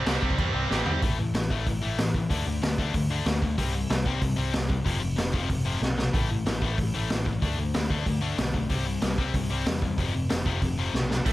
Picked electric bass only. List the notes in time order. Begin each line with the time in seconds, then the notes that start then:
0.06 C2
0.23 C2
0.39 E2
0.54 C2
0.70 A1
0.87 E2
1.03 A1
1.35 A1
1.50 A1
1.67 A1
1.83 A1
1.99 A1
2.30 D2
2.47 D2
2.62 D2
2.78 D2
2.94 D2
3.26 D2
3.58 C2
3.90 C2
4.06 C2
4.22 C2
4.38 C2
4.54 C2
4.86 F1
5.01 F1
5.17 F1
5.34 F1
5.50 F1
5.82 B1
6.14 A1
6.45 A1
6.62 A1
6.78 A1
6.94 A1
7.10 A1
7.42 D2
7.58 D2
7.75 D2
7.90 D2
8.06 D2
8.39 B1
8.70 C2
9.03 C2
9.18 C2
9.34 C2
9.51 C2
9.66 E2
9.98 F1
10.15 F1
10.31 F1
10.46 F1
10.62 F1
10.94 B1
11.26 A1